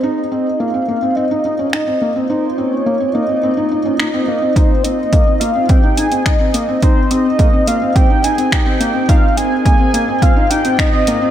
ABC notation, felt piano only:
X:1
M:4/4
L:1/16
Q:1/4=106
K:Ab
V:1 name="Felt piano"
E2 C2 B, C B, C C E E D E C B, C | E2 C2 B, C B, C C E E D E C B, C | E2 C2 B, C B, C C E E C E C B, C | E2 C2 B, C B, C C E E C E C B, C |
E2 C2 B, C B, C C E E C E C B, C |]